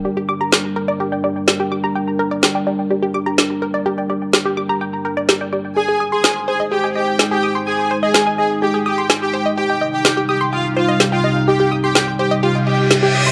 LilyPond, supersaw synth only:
\new Staff \with { instrumentName = "Supersaw synth" } { \time 4/4 \key g \phrygian \tempo 4 = 126 r1 | r1 | r1 | aes'8 r16 aes'8 r16 aes'16 r16 g'16 r16 g'8 r16 g'8 r16 |
aes'8 r16 aes'8 r16 aes'16 r16 g'16 r16 g'8 r16 g'8 r16 | g'8 r16 g'8 r16 g'16 r16 f'16 r16 f'8 r16 f'8 r16 | g'8 r16 g'8 r16 g'16 r16 f'16 r16 g'8 r16 g'8 r16 | }